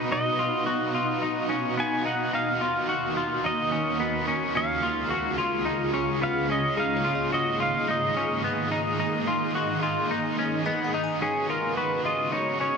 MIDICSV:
0, 0, Header, 1, 6, 480
1, 0, Start_track
1, 0, Tempo, 555556
1, 92, Time_signature, 4, 2, 24, 8
1, 11037, End_track
2, 0, Start_track
2, 0, Title_t, "Pedal steel guitar"
2, 0, Program_c, 0, 26
2, 0, Note_on_c, 0, 71, 85
2, 106, Note_on_c, 0, 75, 99
2, 126, Note_off_c, 0, 71, 0
2, 1555, Note_on_c, 0, 80, 92
2, 1582, Note_off_c, 0, 75, 0
2, 1786, Note_off_c, 0, 80, 0
2, 1789, Note_on_c, 0, 78, 86
2, 2026, Note_off_c, 0, 78, 0
2, 2030, Note_on_c, 0, 77, 103
2, 2991, Note_on_c, 0, 75, 87
2, 3009, Note_off_c, 0, 77, 0
2, 3945, Note_off_c, 0, 75, 0
2, 3949, Note_on_c, 0, 77, 110
2, 5376, Note_off_c, 0, 77, 0
2, 5387, Note_on_c, 0, 77, 89
2, 5603, Note_off_c, 0, 77, 0
2, 5631, Note_on_c, 0, 75, 89
2, 5868, Note_off_c, 0, 75, 0
2, 5871, Note_on_c, 0, 77, 101
2, 6338, Note_off_c, 0, 77, 0
2, 6342, Note_on_c, 0, 75, 85
2, 6584, Note_off_c, 0, 75, 0
2, 6588, Note_on_c, 0, 77, 87
2, 6827, Note_off_c, 0, 77, 0
2, 6831, Note_on_c, 0, 75, 71
2, 9187, Note_off_c, 0, 75, 0
2, 9696, Note_on_c, 0, 68, 90
2, 9930, Note_off_c, 0, 68, 0
2, 9933, Note_on_c, 0, 70, 75
2, 10168, Note_off_c, 0, 70, 0
2, 10171, Note_on_c, 0, 71, 75
2, 10413, Note_on_c, 0, 75, 86
2, 10419, Note_off_c, 0, 71, 0
2, 10653, Note_off_c, 0, 75, 0
2, 10656, Note_on_c, 0, 73, 83
2, 10886, Note_off_c, 0, 73, 0
2, 10896, Note_on_c, 0, 73, 88
2, 11037, Note_off_c, 0, 73, 0
2, 11037, End_track
3, 0, Start_track
3, 0, Title_t, "Synth bell"
3, 0, Program_c, 1, 98
3, 5849, Note_on_c, 1, 68, 66
3, 6018, Note_on_c, 1, 73, 43
3, 6179, Note_on_c, 1, 75, 49
3, 7128, Note_off_c, 1, 68, 0
3, 7272, Note_off_c, 1, 73, 0
3, 7412, Note_off_c, 1, 75, 0
3, 9207, Note_on_c, 1, 75, 77
3, 9368, Note_on_c, 1, 78, 50
3, 9534, Note_on_c, 1, 80, 48
3, 9895, Note_off_c, 1, 75, 0
3, 10036, Note_off_c, 1, 78, 0
3, 10179, Note_off_c, 1, 80, 0
3, 11037, End_track
4, 0, Start_track
4, 0, Title_t, "Clean electric guitar"
4, 0, Program_c, 2, 27
4, 0, Note_on_c, 2, 63, 73
4, 90, Note_off_c, 2, 63, 0
4, 100, Note_on_c, 2, 63, 96
4, 336, Note_off_c, 2, 63, 0
4, 337, Note_on_c, 2, 65, 74
4, 570, Note_off_c, 2, 65, 0
4, 573, Note_on_c, 2, 66, 73
4, 813, Note_off_c, 2, 66, 0
4, 817, Note_on_c, 2, 65, 68
4, 1053, Note_on_c, 2, 63, 80
4, 1054, Note_off_c, 2, 65, 0
4, 1286, Note_off_c, 2, 63, 0
4, 1289, Note_on_c, 2, 61, 76
4, 1529, Note_off_c, 2, 61, 0
4, 1533, Note_on_c, 2, 59, 75
4, 1772, Note_off_c, 2, 59, 0
4, 1775, Note_on_c, 2, 63, 83
4, 2005, Note_off_c, 2, 63, 0
4, 2015, Note_on_c, 2, 63, 88
4, 2254, Note_off_c, 2, 63, 0
4, 2256, Note_on_c, 2, 65, 75
4, 2493, Note_off_c, 2, 65, 0
4, 2496, Note_on_c, 2, 66, 74
4, 2734, Note_off_c, 2, 66, 0
4, 2738, Note_on_c, 2, 65, 72
4, 2974, Note_on_c, 2, 63, 78
4, 2975, Note_off_c, 2, 65, 0
4, 3209, Note_off_c, 2, 63, 0
4, 3212, Note_on_c, 2, 61, 76
4, 3451, Note_off_c, 2, 61, 0
4, 3455, Note_on_c, 2, 59, 69
4, 3692, Note_off_c, 2, 59, 0
4, 3695, Note_on_c, 2, 61, 80
4, 3922, Note_off_c, 2, 61, 0
4, 3932, Note_on_c, 2, 61, 99
4, 4172, Note_off_c, 2, 61, 0
4, 4172, Note_on_c, 2, 65, 77
4, 4407, Note_off_c, 2, 65, 0
4, 4410, Note_on_c, 2, 66, 79
4, 4646, Note_off_c, 2, 66, 0
4, 4649, Note_on_c, 2, 65, 72
4, 4885, Note_on_c, 2, 63, 80
4, 4891, Note_off_c, 2, 65, 0
4, 5126, Note_off_c, 2, 63, 0
4, 5130, Note_on_c, 2, 61, 80
4, 5367, Note_off_c, 2, 61, 0
4, 5370, Note_on_c, 2, 59, 80
4, 5609, Note_off_c, 2, 59, 0
4, 5612, Note_on_c, 2, 61, 73
4, 5849, Note_off_c, 2, 61, 0
4, 5853, Note_on_c, 2, 63, 91
4, 6087, Note_on_c, 2, 65, 77
4, 6092, Note_off_c, 2, 63, 0
4, 6325, Note_off_c, 2, 65, 0
4, 6329, Note_on_c, 2, 66, 77
4, 6564, Note_off_c, 2, 66, 0
4, 6567, Note_on_c, 2, 65, 74
4, 6810, Note_off_c, 2, 65, 0
4, 6812, Note_on_c, 2, 63, 83
4, 7052, Note_off_c, 2, 63, 0
4, 7056, Note_on_c, 2, 61, 79
4, 7289, Note_off_c, 2, 61, 0
4, 7292, Note_on_c, 2, 59, 66
4, 7527, Note_off_c, 2, 59, 0
4, 7530, Note_on_c, 2, 63, 76
4, 7763, Note_off_c, 2, 63, 0
4, 7773, Note_on_c, 2, 63, 104
4, 8012, Note_off_c, 2, 63, 0
4, 8012, Note_on_c, 2, 65, 74
4, 8250, Note_off_c, 2, 65, 0
4, 8253, Note_on_c, 2, 66, 76
4, 8487, Note_off_c, 2, 66, 0
4, 8491, Note_on_c, 2, 65, 74
4, 8731, Note_off_c, 2, 65, 0
4, 8734, Note_on_c, 2, 63, 79
4, 8971, Note_off_c, 2, 63, 0
4, 8974, Note_on_c, 2, 61, 78
4, 9207, Note_off_c, 2, 61, 0
4, 9211, Note_on_c, 2, 59, 79
4, 9450, Note_off_c, 2, 59, 0
4, 9454, Note_on_c, 2, 63, 82
4, 9689, Note_off_c, 2, 63, 0
4, 9692, Note_on_c, 2, 61, 85
4, 9932, Note_off_c, 2, 61, 0
4, 9934, Note_on_c, 2, 65, 71
4, 10169, Note_off_c, 2, 65, 0
4, 10172, Note_on_c, 2, 66, 69
4, 10408, Note_off_c, 2, 66, 0
4, 10411, Note_on_c, 2, 65, 68
4, 10646, Note_on_c, 2, 63, 77
4, 10652, Note_off_c, 2, 65, 0
4, 10885, Note_off_c, 2, 63, 0
4, 10888, Note_on_c, 2, 61, 75
4, 11037, Note_off_c, 2, 61, 0
4, 11037, End_track
5, 0, Start_track
5, 0, Title_t, "Overdriven electric guitar"
5, 0, Program_c, 3, 29
5, 0, Note_on_c, 3, 59, 55
5, 0, Note_on_c, 3, 63, 62
5, 0, Note_on_c, 3, 66, 64
5, 91, Note_off_c, 3, 66, 0
5, 91, Note_on_c, 3, 47, 69
5, 96, Note_off_c, 3, 59, 0
5, 102, Note_on_c, 3, 54, 80
5, 104, Note_off_c, 3, 63, 0
5, 107, Note_on_c, 3, 59, 72
5, 114, Note_on_c, 3, 63, 73
5, 122, Note_on_c, 3, 66, 91
5, 315, Note_off_c, 3, 66, 0
5, 326, Note_on_c, 3, 66, 51
5, 332, Note_off_c, 3, 47, 0
5, 337, Note_off_c, 3, 54, 0
5, 339, Note_off_c, 3, 59, 0
5, 343, Note_off_c, 3, 63, 0
5, 352, Note_on_c, 3, 63, 57
5, 372, Note_on_c, 3, 59, 45
5, 566, Note_on_c, 3, 47, 86
5, 569, Note_off_c, 3, 66, 0
5, 572, Note_off_c, 3, 59, 0
5, 576, Note_on_c, 3, 54, 84
5, 579, Note_off_c, 3, 63, 0
5, 582, Note_on_c, 3, 59, 89
5, 590, Note_on_c, 3, 63, 72
5, 597, Note_on_c, 3, 66, 82
5, 799, Note_off_c, 3, 66, 0
5, 809, Note_off_c, 3, 47, 0
5, 809, Note_on_c, 3, 66, 50
5, 814, Note_off_c, 3, 54, 0
5, 817, Note_off_c, 3, 59, 0
5, 821, Note_off_c, 3, 63, 0
5, 837, Note_on_c, 3, 63, 49
5, 857, Note_on_c, 3, 59, 47
5, 1045, Note_on_c, 3, 54, 71
5, 1051, Note_off_c, 3, 66, 0
5, 1055, Note_off_c, 3, 59, 0
5, 1065, Note_off_c, 3, 63, 0
5, 1065, Note_on_c, 3, 59, 70
5, 1078, Note_on_c, 3, 63, 72
5, 1092, Note_on_c, 3, 66, 79
5, 1278, Note_off_c, 3, 66, 0
5, 1288, Note_off_c, 3, 54, 0
5, 1289, Note_on_c, 3, 66, 58
5, 1299, Note_off_c, 3, 59, 0
5, 1302, Note_off_c, 3, 63, 0
5, 1312, Note_on_c, 3, 63, 55
5, 1335, Note_on_c, 3, 59, 43
5, 1527, Note_on_c, 3, 47, 77
5, 1530, Note_off_c, 3, 66, 0
5, 1532, Note_off_c, 3, 59, 0
5, 1536, Note_on_c, 3, 54, 79
5, 1542, Note_off_c, 3, 63, 0
5, 1542, Note_on_c, 3, 59, 91
5, 1555, Note_on_c, 3, 63, 84
5, 1558, Note_on_c, 3, 66, 86
5, 1749, Note_off_c, 3, 66, 0
5, 1759, Note_on_c, 3, 66, 55
5, 1769, Note_off_c, 3, 63, 0
5, 1770, Note_off_c, 3, 47, 0
5, 1774, Note_off_c, 3, 54, 0
5, 1777, Note_off_c, 3, 59, 0
5, 1780, Note_on_c, 3, 63, 54
5, 1801, Note_on_c, 3, 59, 42
5, 2006, Note_off_c, 3, 66, 0
5, 2008, Note_on_c, 3, 51, 82
5, 2015, Note_off_c, 3, 59, 0
5, 2016, Note_off_c, 3, 63, 0
5, 2018, Note_on_c, 3, 58, 78
5, 2031, Note_on_c, 3, 63, 83
5, 2040, Note_on_c, 3, 66, 83
5, 2236, Note_off_c, 3, 66, 0
5, 2246, Note_on_c, 3, 66, 48
5, 2250, Note_off_c, 3, 51, 0
5, 2255, Note_off_c, 3, 58, 0
5, 2262, Note_off_c, 3, 63, 0
5, 2272, Note_on_c, 3, 63, 44
5, 2293, Note_on_c, 3, 58, 45
5, 2489, Note_off_c, 3, 66, 0
5, 2490, Note_off_c, 3, 58, 0
5, 2491, Note_on_c, 3, 51, 78
5, 2500, Note_on_c, 3, 58, 73
5, 2502, Note_off_c, 3, 63, 0
5, 2513, Note_on_c, 3, 63, 88
5, 2518, Note_on_c, 3, 66, 80
5, 2710, Note_off_c, 3, 66, 0
5, 2720, Note_on_c, 3, 66, 49
5, 2732, Note_off_c, 3, 51, 0
5, 2736, Note_off_c, 3, 58, 0
5, 2739, Note_off_c, 3, 63, 0
5, 2749, Note_on_c, 3, 63, 49
5, 2765, Note_on_c, 3, 58, 43
5, 2956, Note_on_c, 3, 51, 57
5, 2965, Note_off_c, 3, 58, 0
5, 2966, Note_off_c, 3, 66, 0
5, 2975, Note_on_c, 3, 58, 62
5, 2981, Note_off_c, 3, 63, 0
5, 2992, Note_on_c, 3, 63, 68
5, 3002, Note_on_c, 3, 66, 72
5, 3193, Note_off_c, 3, 66, 0
5, 3203, Note_on_c, 3, 66, 46
5, 3204, Note_off_c, 3, 51, 0
5, 3214, Note_off_c, 3, 58, 0
5, 3222, Note_off_c, 3, 63, 0
5, 3232, Note_on_c, 3, 63, 51
5, 3246, Note_on_c, 3, 58, 47
5, 3448, Note_off_c, 3, 66, 0
5, 3453, Note_on_c, 3, 51, 83
5, 3455, Note_off_c, 3, 58, 0
5, 3462, Note_off_c, 3, 63, 0
5, 3465, Note_on_c, 3, 58, 88
5, 3476, Note_on_c, 3, 63, 88
5, 3481, Note_on_c, 3, 66, 89
5, 3676, Note_off_c, 3, 66, 0
5, 3687, Note_on_c, 3, 66, 63
5, 3693, Note_off_c, 3, 51, 0
5, 3699, Note_off_c, 3, 58, 0
5, 3699, Note_off_c, 3, 63, 0
5, 3709, Note_on_c, 3, 63, 60
5, 3729, Note_on_c, 3, 58, 50
5, 3929, Note_off_c, 3, 66, 0
5, 3932, Note_on_c, 3, 49, 70
5, 3939, Note_on_c, 3, 53, 81
5, 3941, Note_off_c, 3, 63, 0
5, 3948, Note_off_c, 3, 58, 0
5, 3952, Note_on_c, 3, 56, 79
5, 3954, Note_on_c, 3, 61, 76
5, 3965, Note_on_c, 3, 68, 89
5, 4155, Note_off_c, 3, 68, 0
5, 4166, Note_on_c, 3, 68, 57
5, 4172, Note_off_c, 3, 49, 0
5, 4176, Note_off_c, 3, 53, 0
5, 4178, Note_off_c, 3, 61, 0
5, 4182, Note_off_c, 3, 56, 0
5, 4188, Note_on_c, 3, 61, 51
5, 4206, Note_on_c, 3, 56, 44
5, 4403, Note_on_c, 3, 49, 74
5, 4409, Note_off_c, 3, 56, 0
5, 4409, Note_off_c, 3, 68, 0
5, 4412, Note_on_c, 3, 53, 76
5, 4417, Note_off_c, 3, 61, 0
5, 4419, Note_on_c, 3, 56, 85
5, 4427, Note_on_c, 3, 61, 91
5, 4434, Note_on_c, 3, 68, 86
5, 4633, Note_off_c, 3, 68, 0
5, 4644, Note_on_c, 3, 68, 55
5, 4648, Note_off_c, 3, 49, 0
5, 4652, Note_off_c, 3, 53, 0
5, 4656, Note_off_c, 3, 56, 0
5, 4656, Note_off_c, 3, 61, 0
5, 4667, Note_on_c, 3, 61, 50
5, 4685, Note_on_c, 3, 56, 49
5, 4880, Note_on_c, 3, 53, 64
5, 4888, Note_off_c, 3, 56, 0
5, 4888, Note_off_c, 3, 68, 0
5, 4898, Note_on_c, 3, 56, 71
5, 4899, Note_off_c, 3, 61, 0
5, 4915, Note_on_c, 3, 61, 79
5, 4929, Note_on_c, 3, 68, 68
5, 5116, Note_off_c, 3, 68, 0
5, 5126, Note_off_c, 3, 53, 0
5, 5126, Note_on_c, 3, 68, 60
5, 5135, Note_off_c, 3, 56, 0
5, 5139, Note_off_c, 3, 61, 0
5, 5150, Note_on_c, 3, 61, 57
5, 5170, Note_on_c, 3, 56, 47
5, 5359, Note_on_c, 3, 49, 82
5, 5365, Note_off_c, 3, 56, 0
5, 5369, Note_off_c, 3, 68, 0
5, 5373, Note_on_c, 3, 53, 86
5, 5375, Note_off_c, 3, 61, 0
5, 5376, Note_on_c, 3, 56, 93
5, 5385, Note_on_c, 3, 61, 81
5, 5394, Note_on_c, 3, 68, 83
5, 5589, Note_off_c, 3, 68, 0
5, 5600, Note_on_c, 3, 68, 65
5, 5605, Note_off_c, 3, 49, 0
5, 5612, Note_off_c, 3, 53, 0
5, 5613, Note_off_c, 3, 61, 0
5, 5614, Note_off_c, 3, 56, 0
5, 5623, Note_on_c, 3, 61, 48
5, 5642, Note_on_c, 3, 56, 42
5, 5833, Note_off_c, 3, 56, 0
5, 5843, Note_on_c, 3, 56, 82
5, 5846, Note_off_c, 3, 68, 0
5, 5855, Note_on_c, 3, 58, 74
5, 5858, Note_off_c, 3, 61, 0
5, 5864, Note_on_c, 3, 63, 80
5, 5874, Note_on_c, 3, 68, 82
5, 6068, Note_off_c, 3, 68, 0
5, 6078, Note_on_c, 3, 68, 57
5, 6088, Note_off_c, 3, 56, 0
5, 6091, Note_off_c, 3, 63, 0
5, 6093, Note_off_c, 3, 58, 0
5, 6102, Note_on_c, 3, 63, 54
5, 6122, Note_on_c, 3, 58, 45
5, 6324, Note_on_c, 3, 56, 76
5, 6325, Note_off_c, 3, 68, 0
5, 6330, Note_off_c, 3, 58, 0
5, 6337, Note_off_c, 3, 63, 0
5, 6340, Note_on_c, 3, 58, 84
5, 6348, Note_on_c, 3, 63, 84
5, 6359, Note_on_c, 3, 68, 85
5, 6550, Note_off_c, 3, 68, 0
5, 6561, Note_on_c, 3, 68, 49
5, 6568, Note_off_c, 3, 56, 0
5, 6574, Note_off_c, 3, 63, 0
5, 6576, Note_off_c, 3, 58, 0
5, 6584, Note_on_c, 3, 63, 40
5, 6604, Note_on_c, 3, 58, 39
5, 6795, Note_on_c, 3, 56, 64
5, 6802, Note_off_c, 3, 58, 0
5, 6807, Note_off_c, 3, 68, 0
5, 6812, Note_on_c, 3, 58, 65
5, 6816, Note_off_c, 3, 63, 0
5, 6826, Note_on_c, 3, 63, 70
5, 6841, Note_on_c, 3, 68, 75
5, 7025, Note_off_c, 3, 68, 0
5, 7035, Note_on_c, 3, 68, 49
5, 7044, Note_off_c, 3, 56, 0
5, 7050, Note_off_c, 3, 63, 0
5, 7052, Note_off_c, 3, 58, 0
5, 7061, Note_on_c, 3, 63, 50
5, 7078, Note_on_c, 3, 58, 39
5, 7283, Note_off_c, 3, 58, 0
5, 7283, Note_on_c, 3, 56, 76
5, 7284, Note_off_c, 3, 68, 0
5, 7292, Note_off_c, 3, 63, 0
5, 7293, Note_on_c, 3, 58, 84
5, 7303, Note_on_c, 3, 63, 85
5, 7315, Note_on_c, 3, 68, 82
5, 7507, Note_off_c, 3, 68, 0
5, 7518, Note_on_c, 3, 68, 67
5, 7527, Note_off_c, 3, 56, 0
5, 7532, Note_off_c, 3, 63, 0
5, 7533, Note_off_c, 3, 58, 0
5, 7542, Note_on_c, 3, 63, 60
5, 7561, Note_on_c, 3, 58, 58
5, 7761, Note_off_c, 3, 58, 0
5, 7762, Note_on_c, 3, 56, 89
5, 7765, Note_off_c, 3, 68, 0
5, 7770, Note_off_c, 3, 63, 0
5, 7772, Note_on_c, 3, 58, 87
5, 7780, Note_on_c, 3, 63, 95
5, 7788, Note_on_c, 3, 68, 81
5, 7986, Note_off_c, 3, 68, 0
5, 7996, Note_on_c, 3, 68, 64
5, 8007, Note_off_c, 3, 56, 0
5, 8012, Note_off_c, 3, 58, 0
5, 8013, Note_off_c, 3, 63, 0
5, 8023, Note_on_c, 3, 63, 51
5, 8040, Note_on_c, 3, 58, 53
5, 8239, Note_off_c, 3, 58, 0
5, 8240, Note_on_c, 3, 56, 102
5, 8244, Note_off_c, 3, 68, 0
5, 8249, Note_on_c, 3, 58, 100
5, 8254, Note_off_c, 3, 63, 0
5, 8264, Note_on_c, 3, 63, 86
5, 8272, Note_on_c, 3, 68, 91
5, 8469, Note_off_c, 3, 68, 0
5, 8479, Note_on_c, 3, 68, 57
5, 8486, Note_off_c, 3, 56, 0
5, 8490, Note_off_c, 3, 63, 0
5, 8491, Note_off_c, 3, 58, 0
5, 8500, Note_on_c, 3, 63, 47
5, 8522, Note_on_c, 3, 58, 51
5, 8719, Note_on_c, 3, 56, 67
5, 8726, Note_off_c, 3, 68, 0
5, 8727, Note_off_c, 3, 58, 0
5, 8736, Note_off_c, 3, 63, 0
5, 8738, Note_on_c, 3, 58, 74
5, 8748, Note_on_c, 3, 63, 78
5, 8760, Note_on_c, 3, 68, 73
5, 8953, Note_off_c, 3, 68, 0
5, 8964, Note_on_c, 3, 68, 58
5, 8965, Note_off_c, 3, 56, 0
5, 8975, Note_off_c, 3, 58, 0
5, 8980, Note_off_c, 3, 63, 0
5, 8990, Note_on_c, 3, 63, 53
5, 9010, Note_on_c, 3, 58, 51
5, 9208, Note_off_c, 3, 68, 0
5, 9209, Note_off_c, 3, 58, 0
5, 9210, Note_on_c, 3, 56, 89
5, 9220, Note_on_c, 3, 58, 87
5, 9221, Note_off_c, 3, 63, 0
5, 9230, Note_on_c, 3, 63, 80
5, 9239, Note_on_c, 3, 68, 107
5, 9428, Note_off_c, 3, 68, 0
5, 9439, Note_on_c, 3, 68, 60
5, 9451, Note_off_c, 3, 56, 0
5, 9456, Note_off_c, 3, 58, 0
5, 9457, Note_off_c, 3, 63, 0
5, 9467, Note_on_c, 3, 63, 57
5, 9485, Note_on_c, 3, 58, 48
5, 9683, Note_on_c, 3, 49, 68
5, 9685, Note_off_c, 3, 68, 0
5, 9686, Note_off_c, 3, 58, 0
5, 9690, Note_on_c, 3, 54, 73
5, 9696, Note_off_c, 3, 63, 0
5, 9699, Note_on_c, 3, 59, 65
5, 9706, Note_on_c, 3, 66, 78
5, 9711, Note_on_c, 3, 68, 84
5, 9909, Note_off_c, 3, 68, 0
5, 9920, Note_on_c, 3, 68, 48
5, 9928, Note_off_c, 3, 49, 0
5, 9931, Note_off_c, 3, 54, 0
5, 9936, Note_off_c, 3, 59, 0
5, 9936, Note_off_c, 3, 66, 0
5, 9946, Note_on_c, 3, 66, 48
5, 9965, Note_on_c, 3, 59, 39
5, 10164, Note_on_c, 3, 54, 53
5, 10166, Note_off_c, 3, 68, 0
5, 10171, Note_off_c, 3, 59, 0
5, 10179, Note_off_c, 3, 66, 0
5, 10181, Note_on_c, 3, 59, 58
5, 10199, Note_on_c, 3, 66, 61
5, 10207, Note_on_c, 3, 68, 57
5, 10393, Note_off_c, 3, 68, 0
5, 10404, Note_on_c, 3, 68, 40
5, 10408, Note_off_c, 3, 54, 0
5, 10417, Note_off_c, 3, 59, 0
5, 10417, Note_off_c, 3, 66, 0
5, 10428, Note_on_c, 3, 66, 42
5, 10449, Note_on_c, 3, 59, 40
5, 10644, Note_on_c, 3, 49, 76
5, 10648, Note_off_c, 3, 68, 0
5, 10650, Note_off_c, 3, 59, 0
5, 10655, Note_on_c, 3, 54, 77
5, 10660, Note_off_c, 3, 66, 0
5, 10660, Note_on_c, 3, 59, 72
5, 10671, Note_on_c, 3, 66, 78
5, 10674, Note_on_c, 3, 68, 79
5, 10867, Note_off_c, 3, 68, 0
5, 10877, Note_on_c, 3, 68, 54
5, 10888, Note_off_c, 3, 49, 0
5, 10890, Note_off_c, 3, 66, 0
5, 10894, Note_off_c, 3, 54, 0
5, 10896, Note_off_c, 3, 59, 0
5, 10900, Note_on_c, 3, 66, 45
5, 10919, Note_on_c, 3, 59, 43
5, 11037, Note_off_c, 3, 59, 0
5, 11037, Note_off_c, 3, 66, 0
5, 11037, Note_off_c, 3, 68, 0
5, 11037, End_track
6, 0, Start_track
6, 0, Title_t, "Ambient pad"
6, 0, Program_c, 4, 92
6, 0, Note_on_c, 4, 47, 81
6, 0, Note_on_c, 4, 59, 75
6, 0, Note_on_c, 4, 63, 73
6, 0, Note_on_c, 4, 66, 77
6, 100, Note_on_c, 4, 77, 89
6, 1980, Note_off_c, 4, 59, 0
6, 1981, Note_off_c, 4, 47, 0
6, 1982, Note_off_c, 4, 63, 0
6, 1997, Note_off_c, 4, 77, 0
6, 2009, Note_on_c, 4, 70, 88
6, 2013, Note_on_c, 4, 39, 85
6, 2013, Note_on_c, 4, 51, 74
6, 2015, Note_on_c, 4, 58, 75
6, 3900, Note_off_c, 4, 66, 0
6, 3911, Note_off_c, 4, 70, 0
6, 3913, Note_off_c, 4, 39, 0
6, 3913, Note_off_c, 4, 51, 0
6, 3914, Note_off_c, 4, 58, 0
6, 3931, Note_on_c, 4, 65, 79
6, 3935, Note_on_c, 4, 37, 75
6, 3936, Note_on_c, 4, 56, 74
6, 3937, Note_on_c, 4, 49, 72
6, 3941, Note_on_c, 4, 68, 86
6, 5833, Note_off_c, 4, 65, 0
6, 5835, Note_off_c, 4, 37, 0
6, 5835, Note_off_c, 4, 49, 0
6, 5835, Note_off_c, 4, 56, 0
6, 5847, Note_on_c, 4, 44, 84
6, 5847, Note_on_c, 4, 51, 82
6, 5849, Note_on_c, 4, 75, 91
6, 5851, Note_on_c, 4, 58, 68
6, 9655, Note_off_c, 4, 44, 0
6, 9655, Note_off_c, 4, 51, 0
6, 9656, Note_off_c, 4, 75, 0
6, 9657, Note_off_c, 4, 58, 0
6, 9662, Note_off_c, 4, 68, 0
6, 9686, Note_on_c, 4, 49, 75
6, 9688, Note_on_c, 4, 66, 71
6, 9689, Note_on_c, 4, 59, 62
6, 9691, Note_on_c, 4, 56, 74
6, 9691, Note_on_c, 4, 75, 86
6, 11037, Note_off_c, 4, 49, 0
6, 11037, Note_off_c, 4, 56, 0
6, 11037, Note_off_c, 4, 59, 0
6, 11037, Note_off_c, 4, 66, 0
6, 11037, Note_off_c, 4, 75, 0
6, 11037, End_track
0, 0, End_of_file